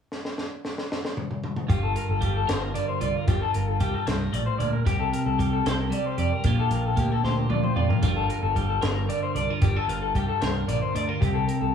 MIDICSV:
0, 0, Header, 1, 5, 480
1, 0, Start_track
1, 0, Key_signature, -2, "minor"
1, 0, Tempo, 528634
1, 102, Time_signature, 6, 3, 24, 8
1, 10666, End_track
2, 0, Start_track
2, 0, Title_t, "Clean electric guitar"
2, 0, Program_c, 0, 27
2, 1537, Note_on_c, 0, 67, 79
2, 1659, Note_off_c, 0, 67, 0
2, 1663, Note_on_c, 0, 69, 72
2, 1773, Note_off_c, 0, 69, 0
2, 1777, Note_on_c, 0, 70, 72
2, 1903, Note_off_c, 0, 70, 0
2, 1903, Note_on_c, 0, 69, 73
2, 2019, Note_off_c, 0, 69, 0
2, 2022, Note_on_c, 0, 67, 73
2, 2141, Note_off_c, 0, 67, 0
2, 2146, Note_on_c, 0, 69, 63
2, 2275, Note_off_c, 0, 69, 0
2, 2275, Note_on_c, 0, 72, 70
2, 2381, Note_off_c, 0, 72, 0
2, 2381, Note_on_c, 0, 70, 68
2, 2491, Note_off_c, 0, 70, 0
2, 2495, Note_on_c, 0, 74, 78
2, 2613, Note_off_c, 0, 74, 0
2, 2617, Note_on_c, 0, 72, 65
2, 2734, Note_off_c, 0, 72, 0
2, 2738, Note_on_c, 0, 74, 76
2, 2865, Note_off_c, 0, 74, 0
2, 2865, Note_on_c, 0, 70, 67
2, 2973, Note_off_c, 0, 70, 0
2, 2977, Note_on_c, 0, 67, 84
2, 3098, Note_off_c, 0, 67, 0
2, 3098, Note_on_c, 0, 69, 74
2, 3215, Note_off_c, 0, 69, 0
2, 3219, Note_on_c, 0, 70, 71
2, 3338, Note_off_c, 0, 70, 0
2, 3338, Note_on_c, 0, 69, 69
2, 3454, Note_off_c, 0, 69, 0
2, 3457, Note_on_c, 0, 67, 73
2, 3577, Note_off_c, 0, 67, 0
2, 3577, Note_on_c, 0, 69, 70
2, 3692, Note_off_c, 0, 69, 0
2, 3692, Note_on_c, 0, 72, 75
2, 3812, Note_off_c, 0, 72, 0
2, 3812, Note_on_c, 0, 70, 72
2, 3929, Note_off_c, 0, 70, 0
2, 3929, Note_on_c, 0, 74, 76
2, 4047, Note_off_c, 0, 74, 0
2, 4050, Note_on_c, 0, 72, 70
2, 4158, Note_off_c, 0, 72, 0
2, 4161, Note_on_c, 0, 74, 80
2, 4290, Note_off_c, 0, 74, 0
2, 4294, Note_on_c, 0, 70, 73
2, 4413, Note_off_c, 0, 70, 0
2, 4417, Note_on_c, 0, 67, 82
2, 4532, Note_off_c, 0, 67, 0
2, 4535, Note_on_c, 0, 69, 71
2, 4652, Note_off_c, 0, 69, 0
2, 4656, Note_on_c, 0, 70, 78
2, 4771, Note_off_c, 0, 70, 0
2, 4775, Note_on_c, 0, 69, 67
2, 4892, Note_off_c, 0, 69, 0
2, 4892, Note_on_c, 0, 67, 75
2, 5015, Note_off_c, 0, 67, 0
2, 5021, Note_on_c, 0, 69, 69
2, 5148, Note_off_c, 0, 69, 0
2, 5148, Note_on_c, 0, 72, 80
2, 5262, Note_off_c, 0, 72, 0
2, 5266, Note_on_c, 0, 70, 71
2, 5381, Note_off_c, 0, 70, 0
2, 5384, Note_on_c, 0, 74, 74
2, 5500, Note_off_c, 0, 74, 0
2, 5500, Note_on_c, 0, 72, 64
2, 5618, Note_off_c, 0, 72, 0
2, 5621, Note_on_c, 0, 74, 73
2, 5741, Note_off_c, 0, 74, 0
2, 5741, Note_on_c, 0, 70, 73
2, 5862, Note_off_c, 0, 70, 0
2, 5862, Note_on_c, 0, 67, 87
2, 5980, Note_off_c, 0, 67, 0
2, 5989, Note_on_c, 0, 69, 71
2, 6100, Note_off_c, 0, 69, 0
2, 6103, Note_on_c, 0, 70, 74
2, 6227, Note_off_c, 0, 70, 0
2, 6227, Note_on_c, 0, 69, 64
2, 6340, Note_off_c, 0, 69, 0
2, 6344, Note_on_c, 0, 67, 77
2, 6461, Note_off_c, 0, 67, 0
2, 6461, Note_on_c, 0, 69, 68
2, 6576, Note_off_c, 0, 69, 0
2, 6580, Note_on_c, 0, 72, 69
2, 6697, Note_off_c, 0, 72, 0
2, 6697, Note_on_c, 0, 70, 62
2, 6811, Note_off_c, 0, 70, 0
2, 6815, Note_on_c, 0, 74, 71
2, 6927, Note_off_c, 0, 74, 0
2, 6931, Note_on_c, 0, 72, 61
2, 7043, Note_off_c, 0, 72, 0
2, 7047, Note_on_c, 0, 74, 71
2, 7162, Note_off_c, 0, 74, 0
2, 7166, Note_on_c, 0, 70, 61
2, 7291, Note_off_c, 0, 70, 0
2, 7291, Note_on_c, 0, 67, 89
2, 7405, Note_off_c, 0, 67, 0
2, 7409, Note_on_c, 0, 69, 72
2, 7527, Note_off_c, 0, 69, 0
2, 7531, Note_on_c, 0, 70, 80
2, 7647, Note_off_c, 0, 70, 0
2, 7651, Note_on_c, 0, 69, 74
2, 7771, Note_off_c, 0, 69, 0
2, 7771, Note_on_c, 0, 67, 74
2, 7884, Note_off_c, 0, 67, 0
2, 7888, Note_on_c, 0, 69, 70
2, 8002, Note_off_c, 0, 69, 0
2, 8002, Note_on_c, 0, 72, 79
2, 8123, Note_off_c, 0, 72, 0
2, 8126, Note_on_c, 0, 70, 65
2, 8250, Note_off_c, 0, 70, 0
2, 8253, Note_on_c, 0, 74, 79
2, 8375, Note_off_c, 0, 74, 0
2, 8379, Note_on_c, 0, 72, 65
2, 8487, Note_off_c, 0, 72, 0
2, 8490, Note_on_c, 0, 74, 72
2, 8618, Note_off_c, 0, 74, 0
2, 8618, Note_on_c, 0, 70, 67
2, 8726, Note_off_c, 0, 70, 0
2, 8730, Note_on_c, 0, 67, 83
2, 8861, Note_off_c, 0, 67, 0
2, 8861, Note_on_c, 0, 69, 66
2, 8978, Note_off_c, 0, 69, 0
2, 8978, Note_on_c, 0, 70, 79
2, 9093, Note_off_c, 0, 70, 0
2, 9097, Note_on_c, 0, 69, 65
2, 9219, Note_off_c, 0, 69, 0
2, 9224, Note_on_c, 0, 67, 72
2, 9335, Note_off_c, 0, 67, 0
2, 9339, Note_on_c, 0, 69, 69
2, 9452, Note_off_c, 0, 69, 0
2, 9452, Note_on_c, 0, 72, 82
2, 9574, Note_off_c, 0, 72, 0
2, 9574, Note_on_c, 0, 70, 72
2, 9696, Note_off_c, 0, 70, 0
2, 9699, Note_on_c, 0, 74, 75
2, 9818, Note_off_c, 0, 74, 0
2, 9822, Note_on_c, 0, 72, 67
2, 9939, Note_off_c, 0, 72, 0
2, 9939, Note_on_c, 0, 74, 78
2, 10051, Note_off_c, 0, 74, 0
2, 10055, Note_on_c, 0, 70, 64
2, 10173, Note_on_c, 0, 67, 83
2, 10179, Note_off_c, 0, 70, 0
2, 10290, Note_on_c, 0, 69, 73
2, 10298, Note_off_c, 0, 67, 0
2, 10417, Note_off_c, 0, 69, 0
2, 10422, Note_on_c, 0, 70, 72
2, 10537, Note_off_c, 0, 70, 0
2, 10541, Note_on_c, 0, 69, 66
2, 10655, Note_off_c, 0, 69, 0
2, 10666, End_track
3, 0, Start_track
3, 0, Title_t, "Clean electric guitar"
3, 0, Program_c, 1, 27
3, 1529, Note_on_c, 1, 43, 78
3, 1541, Note_on_c, 1, 65, 60
3, 2005, Note_on_c, 1, 55, 62
3, 2244, Note_on_c, 1, 70, 60
3, 2490, Note_on_c, 1, 50, 60
3, 2719, Note_off_c, 1, 65, 0
3, 2730, Note_on_c, 1, 65, 56
3, 2946, Note_off_c, 1, 65, 0
3, 2962, Note_off_c, 1, 43, 0
3, 2973, Note_on_c, 1, 43, 80
3, 2975, Note_off_c, 1, 50, 0
3, 2981, Note_on_c, 1, 65, 60
3, 3451, Note_off_c, 1, 55, 0
3, 3454, Note_on_c, 1, 55, 68
3, 3684, Note_off_c, 1, 43, 0
3, 3695, Note_on_c, 1, 43, 57
3, 3923, Note_off_c, 1, 43, 0
3, 3926, Note_on_c, 1, 45, 60
3, 3954, Note_off_c, 1, 70, 0
3, 4173, Note_off_c, 1, 45, 0
3, 4179, Note_on_c, 1, 46, 59
3, 4391, Note_off_c, 1, 65, 0
3, 4403, Note_off_c, 1, 46, 0
3, 4407, Note_on_c, 1, 48, 73
3, 4417, Note_on_c, 1, 67, 59
3, 4889, Note_off_c, 1, 55, 0
3, 4892, Note_on_c, 1, 55, 69
3, 5140, Note_on_c, 1, 69, 60
3, 5358, Note_off_c, 1, 55, 0
3, 5358, Note_on_c, 1, 55, 66
3, 5607, Note_off_c, 1, 67, 0
3, 5611, Note_on_c, 1, 67, 60
3, 5824, Note_off_c, 1, 48, 0
3, 5831, Note_off_c, 1, 69, 0
3, 5849, Note_on_c, 1, 46, 78
3, 5852, Note_on_c, 1, 58, 56
3, 5861, Note_off_c, 1, 67, 0
3, 5861, Note_on_c, 1, 62, 48
3, 5865, Note_on_c, 1, 65, 58
3, 5873, Note_on_c, 1, 67, 63
3, 5892, Note_off_c, 1, 55, 0
3, 6319, Note_off_c, 1, 58, 0
3, 6323, Note_on_c, 1, 58, 64
3, 6575, Note_off_c, 1, 67, 0
3, 6579, Note_on_c, 1, 67, 55
3, 6806, Note_on_c, 1, 53, 60
3, 7043, Note_off_c, 1, 65, 0
3, 7047, Note_on_c, 1, 65, 57
3, 7266, Note_off_c, 1, 46, 0
3, 7279, Note_on_c, 1, 43, 68
3, 7284, Note_off_c, 1, 58, 0
3, 7288, Note_on_c, 1, 55, 56
3, 7292, Note_off_c, 1, 62, 0
3, 7295, Note_on_c, 1, 62, 60
3, 7300, Note_off_c, 1, 65, 0
3, 7304, Note_on_c, 1, 65, 65
3, 7306, Note_off_c, 1, 67, 0
3, 7307, Note_off_c, 1, 53, 0
3, 7309, Note_on_c, 1, 70, 72
3, 7769, Note_off_c, 1, 55, 0
3, 7772, Note_on_c, 1, 55, 61
3, 8005, Note_off_c, 1, 70, 0
3, 8008, Note_on_c, 1, 70, 60
3, 8251, Note_on_c, 1, 50, 62
3, 8500, Note_off_c, 1, 65, 0
3, 8504, Note_off_c, 1, 62, 0
3, 8504, Note_on_c, 1, 62, 52
3, 8630, Note_off_c, 1, 62, 0
3, 8630, Note_on_c, 1, 65, 43
3, 8731, Note_off_c, 1, 43, 0
3, 8737, Note_off_c, 1, 50, 0
3, 8743, Note_on_c, 1, 43, 73
3, 8745, Note_off_c, 1, 65, 0
3, 8751, Note_on_c, 1, 62, 53
3, 8866, Note_on_c, 1, 65, 47
3, 8867, Note_off_c, 1, 62, 0
3, 9223, Note_off_c, 1, 55, 0
3, 9226, Note_on_c, 1, 55, 61
3, 9472, Note_off_c, 1, 70, 0
3, 9476, Note_on_c, 1, 70, 60
3, 9704, Note_on_c, 1, 50, 66
3, 9943, Note_off_c, 1, 65, 0
3, 9947, Note_on_c, 1, 62, 58
3, 10067, Note_off_c, 1, 62, 0
3, 10067, Note_on_c, 1, 65, 45
3, 10182, Note_off_c, 1, 43, 0
3, 10183, Note_off_c, 1, 50, 0
3, 10185, Note_off_c, 1, 65, 0
3, 10186, Note_on_c, 1, 48, 72
3, 10194, Note_on_c, 1, 67, 53
3, 10214, Note_off_c, 1, 70, 0
3, 10664, Note_off_c, 1, 55, 0
3, 10666, Note_off_c, 1, 48, 0
3, 10666, Note_off_c, 1, 67, 0
3, 10666, End_track
4, 0, Start_track
4, 0, Title_t, "Fingered electric bass"
4, 0, Program_c, 2, 33
4, 1538, Note_on_c, 2, 31, 85
4, 1767, Note_off_c, 2, 31, 0
4, 1899, Note_on_c, 2, 31, 75
4, 2241, Note_off_c, 2, 31, 0
4, 2257, Note_on_c, 2, 31, 95
4, 2486, Note_off_c, 2, 31, 0
4, 2738, Note_on_c, 2, 36, 80
4, 2853, Note_off_c, 2, 36, 0
4, 2975, Note_on_c, 2, 31, 83
4, 3091, Note_off_c, 2, 31, 0
4, 3221, Note_on_c, 2, 31, 73
4, 3448, Note_off_c, 2, 31, 0
4, 3457, Note_on_c, 2, 36, 79
4, 3572, Note_off_c, 2, 36, 0
4, 3701, Note_on_c, 2, 36, 78
4, 3928, Note_off_c, 2, 36, 0
4, 3933, Note_on_c, 2, 34, 75
4, 4050, Note_off_c, 2, 34, 0
4, 4173, Note_on_c, 2, 38, 75
4, 4290, Note_off_c, 2, 38, 0
4, 4418, Note_on_c, 2, 36, 83
4, 4646, Note_off_c, 2, 36, 0
4, 4777, Note_on_c, 2, 36, 85
4, 5120, Note_off_c, 2, 36, 0
4, 5136, Note_on_c, 2, 36, 91
4, 5366, Note_off_c, 2, 36, 0
4, 5612, Note_on_c, 2, 41, 74
4, 5729, Note_off_c, 2, 41, 0
4, 5850, Note_on_c, 2, 34, 82
4, 5968, Note_off_c, 2, 34, 0
4, 6093, Note_on_c, 2, 34, 81
4, 6324, Note_off_c, 2, 34, 0
4, 6330, Note_on_c, 2, 38, 89
4, 6448, Note_off_c, 2, 38, 0
4, 6570, Note_on_c, 2, 38, 77
4, 6802, Note_off_c, 2, 38, 0
4, 6812, Note_on_c, 2, 38, 78
4, 6930, Note_off_c, 2, 38, 0
4, 7047, Note_on_c, 2, 41, 82
4, 7167, Note_off_c, 2, 41, 0
4, 7291, Note_on_c, 2, 31, 85
4, 7523, Note_off_c, 2, 31, 0
4, 7651, Note_on_c, 2, 31, 85
4, 7997, Note_off_c, 2, 31, 0
4, 8011, Note_on_c, 2, 31, 100
4, 8244, Note_off_c, 2, 31, 0
4, 8492, Note_on_c, 2, 36, 68
4, 8610, Note_off_c, 2, 36, 0
4, 8734, Note_on_c, 2, 31, 88
4, 8851, Note_off_c, 2, 31, 0
4, 8969, Note_on_c, 2, 31, 76
4, 9203, Note_off_c, 2, 31, 0
4, 9216, Note_on_c, 2, 36, 86
4, 9333, Note_off_c, 2, 36, 0
4, 9463, Note_on_c, 2, 36, 85
4, 9691, Note_off_c, 2, 36, 0
4, 9698, Note_on_c, 2, 34, 80
4, 9814, Note_off_c, 2, 34, 0
4, 9942, Note_on_c, 2, 38, 74
4, 10056, Note_off_c, 2, 38, 0
4, 10186, Note_on_c, 2, 36, 82
4, 10413, Note_off_c, 2, 36, 0
4, 10545, Note_on_c, 2, 36, 84
4, 10666, Note_off_c, 2, 36, 0
4, 10666, End_track
5, 0, Start_track
5, 0, Title_t, "Drums"
5, 107, Note_on_c, 9, 38, 56
5, 198, Note_off_c, 9, 38, 0
5, 228, Note_on_c, 9, 38, 66
5, 319, Note_off_c, 9, 38, 0
5, 346, Note_on_c, 9, 38, 69
5, 437, Note_off_c, 9, 38, 0
5, 587, Note_on_c, 9, 38, 70
5, 678, Note_off_c, 9, 38, 0
5, 711, Note_on_c, 9, 38, 72
5, 802, Note_off_c, 9, 38, 0
5, 835, Note_on_c, 9, 38, 84
5, 925, Note_off_c, 9, 38, 0
5, 951, Note_on_c, 9, 38, 81
5, 1042, Note_off_c, 9, 38, 0
5, 1064, Note_on_c, 9, 45, 91
5, 1155, Note_off_c, 9, 45, 0
5, 1186, Note_on_c, 9, 45, 72
5, 1277, Note_off_c, 9, 45, 0
5, 1303, Note_on_c, 9, 45, 89
5, 1394, Note_off_c, 9, 45, 0
5, 1420, Note_on_c, 9, 45, 99
5, 1511, Note_off_c, 9, 45, 0
5, 1540, Note_on_c, 9, 36, 101
5, 1542, Note_on_c, 9, 42, 70
5, 1631, Note_off_c, 9, 36, 0
5, 1633, Note_off_c, 9, 42, 0
5, 1778, Note_on_c, 9, 42, 60
5, 1869, Note_off_c, 9, 42, 0
5, 2013, Note_on_c, 9, 42, 53
5, 2017, Note_on_c, 9, 36, 63
5, 2104, Note_off_c, 9, 42, 0
5, 2108, Note_off_c, 9, 36, 0
5, 2259, Note_on_c, 9, 42, 78
5, 2265, Note_on_c, 9, 38, 107
5, 2350, Note_off_c, 9, 42, 0
5, 2356, Note_off_c, 9, 38, 0
5, 2501, Note_on_c, 9, 42, 70
5, 2592, Note_off_c, 9, 42, 0
5, 2734, Note_on_c, 9, 42, 56
5, 2825, Note_off_c, 9, 42, 0
5, 2975, Note_on_c, 9, 42, 79
5, 2977, Note_on_c, 9, 36, 102
5, 3066, Note_off_c, 9, 42, 0
5, 3068, Note_off_c, 9, 36, 0
5, 3217, Note_on_c, 9, 42, 58
5, 3307, Note_off_c, 9, 42, 0
5, 3454, Note_on_c, 9, 42, 55
5, 3456, Note_on_c, 9, 36, 67
5, 3545, Note_off_c, 9, 42, 0
5, 3547, Note_off_c, 9, 36, 0
5, 3697, Note_on_c, 9, 42, 75
5, 3703, Note_on_c, 9, 38, 99
5, 3787, Note_off_c, 9, 42, 0
5, 3794, Note_off_c, 9, 38, 0
5, 3938, Note_on_c, 9, 42, 64
5, 4029, Note_off_c, 9, 42, 0
5, 4179, Note_on_c, 9, 42, 51
5, 4270, Note_off_c, 9, 42, 0
5, 4418, Note_on_c, 9, 36, 100
5, 4419, Note_on_c, 9, 42, 72
5, 4508, Note_off_c, 9, 36, 0
5, 4510, Note_off_c, 9, 42, 0
5, 4662, Note_on_c, 9, 42, 62
5, 4752, Note_off_c, 9, 42, 0
5, 4897, Note_on_c, 9, 36, 74
5, 4904, Note_on_c, 9, 42, 52
5, 4988, Note_off_c, 9, 36, 0
5, 4994, Note_off_c, 9, 42, 0
5, 5140, Note_on_c, 9, 42, 84
5, 5147, Note_on_c, 9, 38, 105
5, 5231, Note_off_c, 9, 42, 0
5, 5238, Note_off_c, 9, 38, 0
5, 5376, Note_on_c, 9, 42, 63
5, 5467, Note_off_c, 9, 42, 0
5, 5611, Note_on_c, 9, 42, 52
5, 5702, Note_off_c, 9, 42, 0
5, 5846, Note_on_c, 9, 42, 82
5, 5852, Note_on_c, 9, 36, 108
5, 5936, Note_off_c, 9, 42, 0
5, 5943, Note_off_c, 9, 36, 0
5, 6091, Note_on_c, 9, 42, 61
5, 6182, Note_off_c, 9, 42, 0
5, 6329, Note_on_c, 9, 42, 55
5, 6331, Note_on_c, 9, 36, 64
5, 6420, Note_off_c, 9, 42, 0
5, 6422, Note_off_c, 9, 36, 0
5, 6574, Note_on_c, 9, 38, 55
5, 6665, Note_off_c, 9, 38, 0
5, 6809, Note_on_c, 9, 48, 66
5, 6900, Note_off_c, 9, 48, 0
5, 6934, Note_on_c, 9, 47, 54
5, 7025, Note_off_c, 9, 47, 0
5, 7054, Note_on_c, 9, 45, 78
5, 7144, Note_off_c, 9, 45, 0
5, 7176, Note_on_c, 9, 43, 80
5, 7267, Note_off_c, 9, 43, 0
5, 7288, Note_on_c, 9, 42, 82
5, 7293, Note_on_c, 9, 36, 97
5, 7379, Note_off_c, 9, 42, 0
5, 7384, Note_off_c, 9, 36, 0
5, 7535, Note_on_c, 9, 42, 56
5, 7626, Note_off_c, 9, 42, 0
5, 7774, Note_on_c, 9, 36, 65
5, 7776, Note_on_c, 9, 42, 52
5, 7865, Note_off_c, 9, 36, 0
5, 7867, Note_off_c, 9, 42, 0
5, 8012, Note_on_c, 9, 42, 78
5, 8019, Note_on_c, 9, 38, 104
5, 8103, Note_off_c, 9, 42, 0
5, 8109, Note_off_c, 9, 38, 0
5, 8260, Note_on_c, 9, 42, 66
5, 8351, Note_off_c, 9, 42, 0
5, 8497, Note_on_c, 9, 42, 53
5, 8588, Note_off_c, 9, 42, 0
5, 8732, Note_on_c, 9, 42, 70
5, 8734, Note_on_c, 9, 36, 101
5, 8823, Note_off_c, 9, 42, 0
5, 8825, Note_off_c, 9, 36, 0
5, 8983, Note_on_c, 9, 42, 53
5, 9074, Note_off_c, 9, 42, 0
5, 9218, Note_on_c, 9, 36, 65
5, 9220, Note_on_c, 9, 42, 49
5, 9308, Note_off_c, 9, 36, 0
5, 9311, Note_off_c, 9, 42, 0
5, 9459, Note_on_c, 9, 42, 75
5, 9465, Note_on_c, 9, 38, 107
5, 9550, Note_off_c, 9, 42, 0
5, 9556, Note_off_c, 9, 38, 0
5, 9704, Note_on_c, 9, 42, 67
5, 9795, Note_off_c, 9, 42, 0
5, 9949, Note_on_c, 9, 42, 56
5, 10039, Note_off_c, 9, 42, 0
5, 10186, Note_on_c, 9, 36, 92
5, 10192, Note_on_c, 9, 42, 74
5, 10277, Note_off_c, 9, 36, 0
5, 10283, Note_off_c, 9, 42, 0
5, 10429, Note_on_c, 9, 42, 62
5, 10520, Note_off_c, 9, 42, 0
5, 10666, End_track
0, 0, End_of_file